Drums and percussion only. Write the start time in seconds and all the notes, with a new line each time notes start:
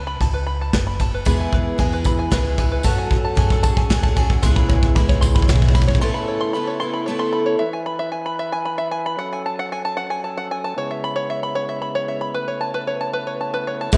0.21 kick, ride
0.73 kick, snare, ride
1.00 kick, ride
1.25 kick, ride, tambourine
1.53 kick
1.79 kick, ride
1.92 tambourine
2.04 kick, tambourine
2.17 tambourine
2.32 kick, snare, ride
2.58 kick, ride
2.83 kick, ride, tambourine
3.11 kick
3.37 kick, ride
3.50 kick, tambourine
3.63 kick, tambourine
3.77 kick, tambourine
3.90 kick, snare, ride
4.04 kick
4.17 kick, ride
4.30 kick
4.43 kick, ride, tambourine
4.56 kick
4.70 kick
4.83 kick
4.96 kick, ride
5.09 kick, tambourine
5.22 kick, tambourine
5.35 kick, tambourine
5.42 kick
5.49 kick, snare, ride
5.56 kick
5.62 kick
5.69 kick
5.75 kick, ride
5.82 kick
5.88 kick
5.95 kick
13.92 kick, closed hi-hat, tambourine